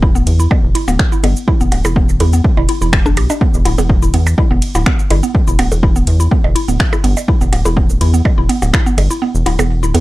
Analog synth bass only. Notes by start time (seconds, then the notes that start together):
Already playing: E1
0.15 D1
0.27 E2
0.64 E1
0.88 D1
1.24 G1
1.61 E1
1.72 D1
1.85 E1
2.09 D1
2.20 E2
2.57 E1
2.81 E1
3.17 B1
3.54 E1
3.66 D1
3.78 E1
4.03 D1
4.14 E2
4.51 E1
4.75 D1
5.11 G1
5.48 E1
5.59 D1
5.72 E1
5.96 D1
6.07 E2
6.44 E1
6.68 D1
7.04 G1
7.41 E1
7.53 D1
7.65 E1
7.90 D1
8.01 E2
8.38 E1
8.62 D1
8.98 G1
9.35 E1
9.46 D1
9.59 E1
9.83 D1
9.94 E2